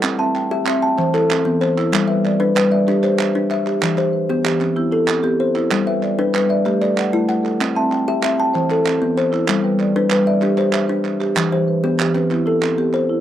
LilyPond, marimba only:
\new Staff \with { instrumentName = "Marimba" } { \time 12/8 \key e \minor \tempo 4. = 127 << { r8 e''8 g''4 e''8 g''4 e'8 c'4. r8 | r8 b'8 d''4 b'8 d''4 g'8 e''4. r8 | r8 g'8 b'4 g'4. e'8 c'4. r8 | r8 b'8 d''4 b'8 d''4 a'8 fis''4. r8 |
r8 e''8 g''4 e''8 g''4 e'8 c'4. r8 | r8 b'8 d''4 b'8 d''4 g'8 e''4. r8 | r8 g'8 b'4 g'8 b'4 e'8 c'4. r8 | } \\ { a'8 c'4 r8 c'4 c''8 r4 e4 e'8~ | e'8 g4 r8 g4 g'4 r8 b'4 g'8~ | g'8 e4 r8 e4 e'4 r8 g'4 e'8~ | e'8 g4 r8 g4 g'8 r4 a4 a'8~ |
a'8 c'4 r8 c'4 c''8 r4 e4 e'8~ | e'8 g4 r8 g4 g'4 r8 b'4 g'8~ | g'8 e4 r8 e4 e'4 r8 g'4 e'8 | } >> }